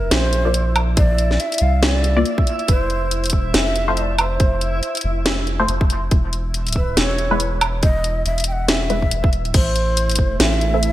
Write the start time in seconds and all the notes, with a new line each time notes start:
Already playing: E4 A#4 E5
0.11 A#1 C5, snare, closed hi-hat
0.33 closed hi-hat
0.45 A#3 F4 D5
0.54 closed hi-hat
0.76 closed hi-hat, low woodblock
0.97 D5, kick, closed hi-hat
1.18 closed hi-hat
1.31 snare
1.40 E5, closed hi-hat
1.52 closed hi-hat
1.54 closed hi-hat
1.58 C2 F5, closed hi-hat
1.83 C#5, snare, closed hi-hat
1.96 D5
2.04 closed hi-hat
2.17 A#3 F4 D5
2.26 closed hi-hat
2.38 kick
2.47 closed hi-hat
2.59 closed hi-hat
2.68 F1 C5, kick, closed hi-hat
2.90 closed hi-hat
3.11 closed hi-hat
3.24 closed hi-hat
3.26 E1, closed hi-hat
3.30 kick, closed hi-hat
3.54 F1 E5, snare, closed hi-hat
3.76 closed hi-hat
3.88 A3 F4 C5
3.97 D#5, closed hi-hat
4.01 D5
4.18 C5, closed hi-hat, low woodblock
4.40 kick, closed hi-hat
4.61 closed hi-hat
4.83 closed hi-hat
4.95 closed hi-hat
4.97 closed hi-hat
5.01 F1, closed hi-hat
5.26 snare, closed hi-hat
5.47 closed hi-hat
5.60 A3 F4 C5
5.68 F1, closed hi-hat
5.81 kick
5.90 closed hi-hat
6.11 E1, kick, closed hi-hat
6.33 closed hi-hat
6.54 closed hi-hat
6.67 closed hi-hat
6.68 closed hi-hat
6.73 B4, kick, closed hi-hat
6.97 E1 C#5, snare, closed hi-hat
7.18 closed hi-hat
7.31 G#3 E4 B4
7.40 closed hi-hat
7.61 closed hi-hat, low woodblock
7.83 D#5, kick, closed hi-hat
8.04 closed hi-hat
8.26 E1 E5, closed hi-hat
8.38 closed hi-hat
8.40 closed hi-hat
8.44 G5, closed hi-hat
8.52 F#5
8.68 E5, snare, closed hi-hat
8.90 G#3 E4 B4, closed hi-hat
9.02 kick
9.11 E1, closed hi-hat
9.24 kick
9.33 closed hi-hat
9.45 closed hi-hat
9.54 A1 A3 E4 A4 C5, kick, closed hi-hat, crash
9.76 closed hi-hat
9.97 closed hi-hat
10.10 closed hi-hat
10.11 closed hi-hat
10.16 kick, closed hi-hat
10.40 A1 E5, snare, closed hi-hat
10.61 closed hi-hat
10.74 C4 A4 E5
10.83 closed hi-hat